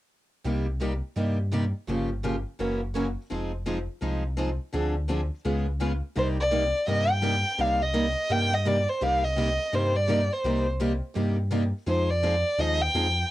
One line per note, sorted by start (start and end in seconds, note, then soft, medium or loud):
0.44 1.02 C2 medium
0.44 0.65 C3 medium
0.44 0.65 G3 medium
0.44 0.65 A#3 medium
0.44 0.66 D#4 soft
0.44 0.66 G4 medium
0.80 0.91 C3 medium
0.80 0.91 G3 medium
0.80 0.92 A#3 medium
0.80 0.92 D#4 medium
0.80 0.92 G4 medium
1.16 1.73 G2 medium
1.16 1.37 C3 medium
1.16 1.37 G3 medium
1.16 1.37 A#3 medium
1.16 1.37 D#4 medium
1.16 1.37 G4 medium
1.52 1.63 C3 medium
1.52 1.63 G3 medium
1.52 1.63 A#3 medium
1.52 1.63 D#4 medium
1.52 1.63 G4 medium
1.87 2.45 G1 medium
1.87 2.08 C#3 medium
1.87 2.08 F3 medium
1.87 2.09 A#3 medium
1.87 2.09 F4 medium
1.87 2.09 G4 medium
2.23 2.34 C#3 medium
2.23 2.35 F3 medium
2.23 2.34 A#3 medium
2.23 2.35 F4 medium
2.23 2.35 G4 medium
2.59 3.16 F#1 medium
2.59 2.79 C#3 medium
2.59 2.80 E3 medium
2.59 2.80 F#3 medium
2.59 2.80 A#3 medium
2.59 2.80 C#4 medium
2.59 2.80 E4 medium
2.59 2.80 F#4 medium
2.59 2.80 A#4 medium
2.94 3.06 C#3 medium
2.94 3.06 E3 medium
2.94 3.05 F#3 medium
2.94 3.06 A#3 medium
2.94 3.06 C#4 medium
2.94 3.06 E4 medium
2.94 3.06 F#4 medium
2.94 3.06 A#4 medium
3.30 3.88 F1 medium
3.30 3.51 F3 soft
3.30 3.51 G#3 medium
3.30 3.51 C4 medium
3.30 3.51 D#4 medium
3.30 3.51 F4 medium
3.30 3.51 G#4 medium
3.30 3.51 C5 medium
3.66 3.77 F3 medium
3.66 3.77 G#3 medium
3.66 3.77 C4 medium
3.66 3.77 D#4 medium
3.66 3.77 F4 medium
3.66 3.77 G#4 medium
3.66 3.78 C5 medium
4.01 4.59 C2 medium
4.01 4.22 F3 medium
4.01 4.22 G#3 medium
4.01 4.22 C4 medium
4.01 4.22 D#4 medium
4.01 4.23 F4 medium
4.01 4.23 G#4 medium
4.01 4.23 C5 medium
4.37 4.48 F3 medium
4.37 4.49 G#3 medium
4.37 4.48 C4 medium
4.37 4.49 D#4 medium
4.37 4.49 F4 medium
4.37 4.49 G#4 medium
4.37 4.49 C5 medium
4.73 5.30 D2 medium
4.73 4.94 D3 soft
4.73 4.94 F3 medium
4.73 4.94 C4 medium
4.73 4.94 D4 medium
4.73 4.94 G#4 medium
5.09 5.20 D3 medium
5.09 5.20 F3 medium
5.09 5.20 C4 medium
5.09 5.20 D4 medium
5.09 5.20 G#4 medium
5.45 6.02 C#2 medium
5.45 5.65 C#3 medium
5.45 5.65 G#3 medium
5.45 5.66 B3 medium
5.45 5.66 F4 medium
5.45 5.66 G#4 medium
5.80 5.91 C#3 medium
5.80 5.91 G#3 medium
5.80 5.91 B3 medium
5.80 5.91 F4 medium
5.80 5.92 G#4 medium
6.15 6.73 C2 medium
6.15 6.36 C3 medium
6.15 6.36 G3 medium
6.15 6.37 A#3 medium
6.15 6.37 D#4 medium
6.15 6.37 G4 medium
6.15 6.27 C5 medium
6.40 6.85 D5 medium
6.51 6.62 C3 medium
6.51 6.62 G3 medium
6.51 6.62 A#3 medium
6.51 6.62 D#4 medium
6.51 6.62 G4 medium
6.87 7.45 G2 medium
6.87 7.07 C3 medium
6.87 7.07 G3 medium
6.87 7.08 A#3 medium
6.87 7.08 D#4 medium
6.87 7.08 G4 medium
6.87 7.12 D#5 medium
7.11 7.62 G5 medium
7.23 7.34 C3 medium
7.23 7.34 G3 medium
7.23 7.34 A#3 medium
7.23 7.34 D#4 medium
7.23 7.34 G4 medium
7.58 8.16 C2 medium
7.58 7.79 C3 soft
7.58 7.79 G3 medium
7.58 7.79 A#3 medium
7.58 7.79 D#4 medium
7.58 7.79 G4 medium
7.58 7.83 F5 medium
7.82 8.33 D#5 medium
7.94 8.05 C3 medium
7.94 8.05 G3 medium
7.94 8.05 A#3 medium
7.94 8.05 D#4 medium
7.94 8.05 G4 medium
8.30 8.87 G2 medium
8.30 8.51 C3 medium
8.30 8.51 G3 medium
8.30 8.51 A#3 medium
8.30 8.51 D#4 medium
8.30 8.51 G4 medium
8.30 8.55 G5 medium
8.54 8.69 D#5 medium
8.65 8.76 C3 medium
8.65 8.76 G3 medium
8.65 8.77 A#3 medium
8.65 8.77 D#4 medium
8.65 8.77 G4 medium
8.65 8.91 D5 medium
8.89 9.05 C5 medium
9.01 9.59 C2 medium
9.01 9.22 C3 medium
9.01 9.22 G3 medium
9.01 9.22 A#3 medium
9.01 9.22 D#4 medium
9.01 9.22 G4 medium
9.01 9.26 F5 medium
9.24 9.76 D#5 medium
9.38 9.48 C3 medium
9.38 9.48 G3 medium
9.38 9.49 A#3 medium
9.38 9.49 D#4 medium
9.38 9.49 G4 medium
9.73 10.30 G2 medium
9.73 9.94 C3 medium
9.73 9.94 G3 medium
9.73 9.94 A#3 medium
9.73 9.94 D#4 medium
9.73 9.94 G4 medium
9.73 9.98 C5 medium
9.96 10.34 D5 medium
10.08 10.19 C3 medium
10.08 10.19 G3 medium
10.08 10.19 A#3 medium
10.08 10.20 D#4 medium
10.08 10.20 G4 medium
10.32 10.67 C5 medium
10.44 11.01 C2 medium
10.44 10.65 C3 medium
10.44 10.65 G3 medium
10.44 10.65 A#3 medium
10.44 10.65 D#4 medium
10.44 10.65 G4 medium
10.80 10.91 C3 medium
10.80 10.91 G3 medium
10.80 10.91 A#3 medium
10.80 10.91 D#4 medium
10.80 10.91 G4 medium
11.14 11.73 G2 medium
11.14 11.36 C3 medium
11.14 11.36 G3 medium
11.14 11.36 A#3 medium
11.14 11.36 D#4 medium
11.14 11.36 G4 medium
11.51 11.62 C3 medium
11.51 11.62 G3 medium
11.51 11.62 A#3 medium
11.51 11.63 D#4 medium
11.51 11.62 G4 medium
11.86 12.44 F2 medium
11.86 12.07 F3 medium
11.86 12.07 G#3 medium
11.86 12.08 C4 medium
11.86 12.08 D#4 medium
11.86 12.08 F4 medium
11.86 12.08 G#4 medium
11.86 12.08 C5 medium
11.86 12.11 C5 medium
12.10 12.61 D5 medium
12.23 12.34 F3 medium
12.23 12.34 G#3 medium
12.23 12.34 C4 medium
12.23 12.34 D#4 medium
12.23 12.34 F4 medium
12.23 12.34 G#4 medium
12.23 12.34 C5 medium
12.58 12.89 D#2 medium
12.58 12.79 F3 medium
12.58 12.79 G#3 medium
12.58 12.79 C4 medium
12.58 12.79 D#4 medium
12.58 12.79 F4 medium
12.58 12.80 G#4 medium
12.58 12.80 C5 medium
12.58 12.83 D#5 medium
12.81 13.30 G5 medium
12.94 13.25 F2 medium
12.94 13.05 F3 medium
12.94 13.05 G#3 medium
12.94 13.06 C4 medium
12.94 13.06 D#4 medium
12.94 13.06 F4 medium
12.94 13.06 G#4 medium
12.94 13.06 C5 medium